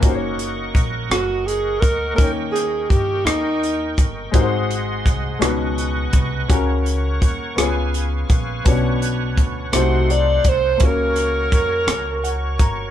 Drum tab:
HH |xxxxxx|xxxxxx|xxxxxx|xxxxxx|
SD |---r--|-r-r--|--rr--|---r--|
BD |o-o--o|o-o--o|o-o--o|o-o--o|

HH |xxxxxx|xxxxxx|
SD |---r--|-r-r--|
BD |o-o--o|o-o--o|